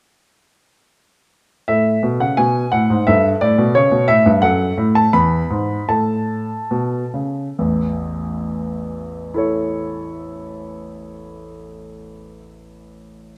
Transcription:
grand piano
1.68 A2 A4 E5
2.03 B2
2.20 C#3 F#5
2.37 B2 G#5
2.72 A2 F#5
2.90 G#2
3.07 G2 A4 E5
3.41 A2 D5
3.58 B2
3.75 C#3 C#5
3.92 B2
4.08 A2 E5
4.26 G2
4.42 F#2 A4 F#5
4.77 A2
4.95 A5
5.13 E2 B5
5.50 G#2
5.89 A2 A4 A5
6.71 B2
7.14 C#3
7.59 A1 E2
9.34 E4 A4 C#5

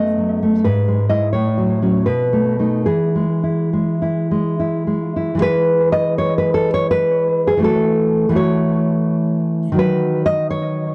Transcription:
nylon-string guitar
Already playing: F#2 A3 B3 A4 D#5
0.18 F#3
0.43 A3
0.64 G#2 B4
0.88 G#3
1.09 G#3 E4 D#5
1.33 A2 C#5
1.58 F#3
1.82 F#3 C#4
2.06 B2 B4
2.33 A3
2.59 A3 D#4
2.86 E3 G#4
3.15 G#3
3.43 E4
3.73 G#3
4.02 E4
4.31 G#3
4.59 E4
4.87 G#3
5.16 E4
5.35 E3 G#3
5.41 G#4 B4
5.92 D#5
6.18 C#5
6.38 B4
6.54 A4
6.74 C#5
6.91 B4
7.47 G#4
7.57 E3 A3
7.63 F#4 A4
8.29 E3 A3
8.35 F#4 C#5
9.72 D#3 F#3
9.77 F#4 B4
10.26 D#5
10.51 C#5

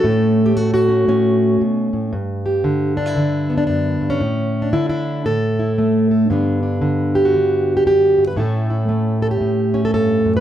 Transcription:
steel-string acoustic guitar
Already playing: A4
0.04 A2 A3 C#4
0.46 G4
0.57 A3 F#4
0.74 F#4
0.89 C#4
1.08 A2 C#4
1.61 B2
1.93 A2
2.13 G2
2.46 G4
2.64 D3
2.97 D4
3.06 E4
3.16 D3
3.50 B3
3.58 D4
3.67 F#2 D4
4.01 G2
4.10 C#4
4.21 A2
4.62 D4
4.73 D3 E4
4.89 E4
5.25 A2 A4
5.59 E4
5.78 A3
6.11 A4
6.30 G2 D3 B3 D4
6.63 D4
6.81 D3
7.15 G4
7.25 F#4
7.34 D3
7.77 G4
7.85 F#2 G4
8.18 G2
8.27 B4
8.37 A2 A3 C#4 E4 A4
8.70 E4
8.89 A3
9.22 A4
9.31 G4
9.41 A2
9.74 C#4
9.85 A4
9.93 G2 A4
10.25 F#2
10.37 B4

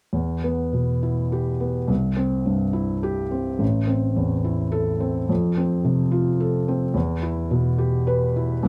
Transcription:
felt piano
0.13 E2
0.43 B3
0.73 B2
1.03 E4
1.32 G4
1.60 B3
1.88 C2
2.16 C4
2.46 G2
2.73 E4
3.03 G4
3.31 C4
3.59 A1
3.87 C4
4.16 E2
4.44 E4
4.72 A4
5.00 C4
5.29 F2
5.57 C4
5.85 C3
6.12 F4
6.40 A4
6.68 C4
6.94 E2
7.22 E4
7.51 B2
7.78 G4
8.07 B4
8.36 E4
8.63 C2

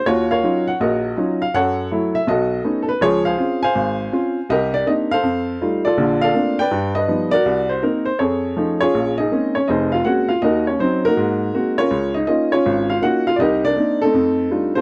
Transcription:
upright piano
0.06 D#2 F4 F#4 C#5
0.31 A#4 C#5 F5
0.43 F#3 C#4 D#4 F4
0.68 F#5
0.80 A#1 F#4 A#4 D#5
1.17 F#3 C#4 D#4 F4
1.42 F5
1.54 F#2 A4 C#5 F#5
1.91 F#3 A3 E4
2.15 E5
2.27 B1 F#4 A4 D#5
2.64 A3 B3 C#4 D#4
2.83 A4
2.89 B4
3.01 C#2 F3 F4 G#4 C#5
3.25 G#4 C5 F5
3.37 C4 C#4 F4
3.63 C5 F5 G#5
3.75 G#1
4.12 C4 C#4 F4
4.49 C2 G4 A#4 D#5
4.74 D5
4.86 A#3 C4 D4 D#4 D#5
5.11 A4 C5 F5
5.23 F2
5.61 G3 A3 D#4 F4
5.85 F4 A4 D5
5.98 A#1 D3
6.21 A4 D5 F5
6.34 A3 A#3 C4 D4
6.59 B4 D5 G5
6.71 G2
6.95 B4 D#5
7.08 F3 G3 B3 D#4
7.31 F#4 A#4 D5
7.46 C2
7.69 C5
7.82 A#3 C4 D#4 A#4
8.05 C5
8.19 F2 G#4 A4 C#5
8.57 F3 A3 C#4 D#4
8.81 C#4 F4 G#4 C#5
8.95 A#1
9.18 D#4 G#4 D#5
9.31 G#3 A#3 C4 C#4
9.55 C#4 C#5
9.68 F1 F2 D#4 G#4 C5 D#5
9.92 F4 F5
10.05 G#3 A#3 C4 C#4 F#4 F#5
10.29 F4 F5
10.42 D#2 D#4 F#4 A#4 D#5
10.67 C#4 C#5
10.79 F#3 C4 C#4 D#4 C5
11.05 A#3 D#4 F#4 A#4
11.17 G#2
11.54 G#3 A#3 C4 F#4
11.78 C#4 F4 A#4 C#5
11.91 C#2
12.14 D#4 D#5
12.27 A#3 C#4 D#4 F4 D#5
12.52 C#4 F4 C#5
12.66 G#1
12.90 F4 F5
13.02 A#3 C#4 D#4 F4 F#4 F#5
13.27 F4 F5
13.36 C2 D5 D#5
13.41 D#4 G4 A#4
13.65 D4 A#4 D5
13.76 A#3 C4 D4 D#4
14.02 A3 C4 D#4 A4
14.14 F2
14.51 G3 A3 D4 D#4 F4
14.75 C4 F4 A4 C5

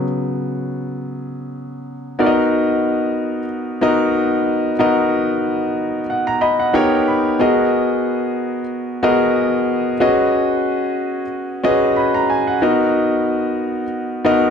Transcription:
grand piano
Already playing: C#3 F#3 B3
2.19 B3 D#4 F#4 A#4 D5
2.26 D#5
3.81 B3 D#4 F#4 A#4 D#5
4.79 B3 D#4 F#4 A#4 D#5
6.10 F#5
6.27 A#5
6.41 D#5 B5
6.60 F#5
6.73 B3 D#4 G4 A#4 C#5 G5
7.07 B5
7.39 B3 F#4 G#4 A#4 D#5
9.03 B3 F#4 G#4 A#4 D#5
10.00 C#4 F#4 G#4 B4 D#5
11.63 C#4 F#4 G#4 B4 D#5
11.96 B5
12.14 A#5
12.30 G#5
12.47 F#5
12.62 B3 D#4 F#4 A#4 D#5
14.25 B3 D#4 F#4 A#4 D#5

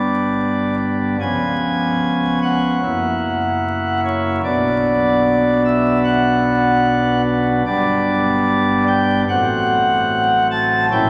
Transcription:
pipe organ
Already playing: G1 G2 G3 B3 D4 D5
1.20 C#1 C#2 F3 B3 C#4 G#5
2.43 F#5
2.83 F#1 F#2 F#3 A#3 E4
4.05 C#5
4.44 B1 B2 F#3 B3 D4 D5
5.65 E5
6.05 F#5
7.66 G1 G2 G3 B3 D4 D5
8.87 G5
9.29 A1 A2 F#3 C4 F#5
10.51 A5
10.91 A#1 A#2 E3 C#4 E4 G5

